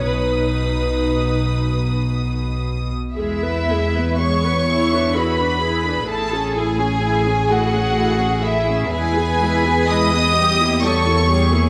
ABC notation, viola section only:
X:1
M:6/8
L:1/16
Q:3/8=42
K:B
V:1 name="Viola section"
D8- D z3 | [K:E] [G,G] [B,B] [G,G] [B,B] [G,G] [B,B] [EG] [=DB] [EG] [DB] [EG] [DB] | [A,E] [CG] [A,E] [CG] [A,E] [CG] [A,E] [CG] [A,E] [CG] [A,E] [CG] | [G,E] [B,G] [G,E] [B,G] [G,E] [B,G] [=G,=G] [_B,E] [G,G] [B,E] [G,G] [B,E] |]